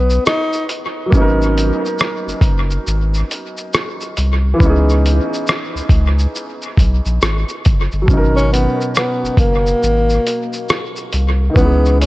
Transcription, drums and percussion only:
0.10 shaker soft
0.26 cross-stick loud
0.26 shaker medium
0.53 shaker soft
0.69 closed hi-hat medium
0.69 shaker soft
1.12 kick loud
1.12 shaker medium
1.42 shaker soft
1.58 closed hi-hat medium
1.58 shaker soft
1.85 shaker soft
1.99 cross-stick medium
1.99 shaker medium
2.29 shaker soft
2.41 kick medium
2.41 closed hi-hat medium
2.41 shaker soft
2.71 shaker soft
2.87 shaker medium
3.14 shaker soft
3.31 closed hi-hat medium
3.31 shaker soft
3.57 shaker soft
3.73 cross-stick loud
3.73 shaker medium
4.01 shaker medium
4.17 closed hi-hat medium
4.17 shaker soft
4.60 kick loud
4.60 shaker medium
4.89 shaker soft
5.06 closed hi-hat medium
5.06 shaker soft
5.33 shaker soft
5.47 cross-stick loud
5.47 shaker medium
5.76 shaker soft
5.89 kick loud
5.89 closed hi-hat medium
5.89 shaker soft
6.19 shaker soft
6.35 shaker medium
6.62 shaker soft
6.77 kick medium
6.77 closed hi-hat medium
6.77 shaker medium
7.05 shaker soft
7.21 cross-stick loud
7.21 shaker medium
7.48 shaker medium
7.65 kick medium
7.65 closed hi-hat medium
7.65 shaker soft
7.92 shaker soft
8.08 kick loud
8.08 shaker medium
8.37 shaker soft
8.54 closed hi-hat medium
8.54 shaker soft
8.81 shaker soft
8.95 cross-stick medium
8.95 shaker medium
9.25 shaker soft
9.37 kick loud
9.37 closed hi-hat medium
9.37 shaker soft
9.66 shaker soft
9.83 shaker medium
10.10 shaker soft
10.27 closed hi-hat medium
10.27 shaker soft
10.53 shaker soft
10.69 cross-stick loud
10.69 shaker medium
10.96 shaker medium
11.13 closed hi-hat medium
11.13 shaker soft
11.56 kick loud
11.56 shaker medium
11.85 shaker soft
12.02 closed hi-hat medium
12.02 shaker soft

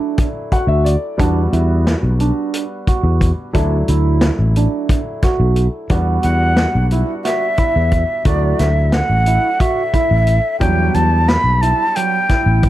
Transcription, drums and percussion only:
0.18 kick loud
0.18 closed hi-hat medium
0.52 kick medium
0.52 closed hi-hat soft
0.86 closed hi-hat medium
1.19 kick medium
1.19 closed hi-hat medium
1.53 closed hi-hat soft
1.87 snare medium
1.87 closed hi-hat medium
2.20 closed hi-hat soft
2.54 closed hi-hat medium
2.87 kick medium
2.87 closed hi-hat medium
3.21 kick medium
3.21 closed hi-hat medium
3.54 kick loud
3.54 closed hi-hat medium
3.88 closed hi-hat medium
4.21 snare loud
4.21 closed hi-hat medium
4.56 closed hi-hat medium
4.89 kick loud
4.89 closed hi-hat medium
5.22 kick medium
5.22 snare soft
5.22 closed hi-hat medium
5.56 closed hi-hat medium
5.89 kick medium
5.89 closed hi-hat medium
6.23 closed hi-hat medium
6.57 snare medium
6.57 closed hi-hat medium
6.91 closed hi-hat soft
7.25 snare soft
7.25 closed hi-hat medium
7.58 kick medium
7.58 closed hi-hat medium
7.91 kick medium
7.91 closed hi-hat medium
8.25 kick medium
8.25 closed hi-hat medium
8.59 snare soft
8.59 closed hi-hat medium
8.92 snare medium
8.92 closed hi-hat medium
9.26 closed hi-hat medium
9.60 kick medium
9.60 closed hi-hat medium
9.94 kick medium
9.94 closed hi-hat medium
10.27 closed hi-hat medium
10.61 kick loud
10.61 closed hi-hat medium
10.94 closed hi-hat medium
11.28 snare medium
11.28 closed hi-hat medium
11.62 closed hi-hat medium
11.96 closed hi-hat medium
12.29 kick medium
12.29 snare soft
12.29 closed hi-hat soft
12.63 kick medium
12.63 closed hi-hat soft

